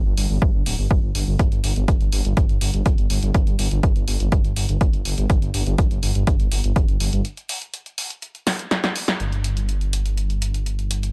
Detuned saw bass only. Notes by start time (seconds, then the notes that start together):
0.06 G1
0.17 G1
0.30 G1
0.54 G1
0.66 D1
0.79 G1
1.03 G1
1.15 G1
1.27 G1
1.52 G1
1.64 G1
1.76 G1
2.01 G1
2.13 G1
2.25 G1
2.49 G1
2.61 G1
2.74 G1
2.86 G1
2.98 G1
3.10 G1
3.23 G1
3.35 G1
3.47 G1
3.59 G1
3.71 G1
3.96 G1
4.08 G1
4.20 G1
4.32 G1
4.45 G1
4.57 G1
4.69 G1
4.81 G1
4.93 G1
5.05 G1
5.18 G1
5.30 G1
5.42 G1
5.54 G1
5.67 G1
5.78 G1
5.91 G1
6.03 G1
6.15 G1
6.27 G1
6.40 G1
6.52 G1
6.64 G1
6.76 G1
6.89 G1
7.00 G1
7.13 G1
9.20 G1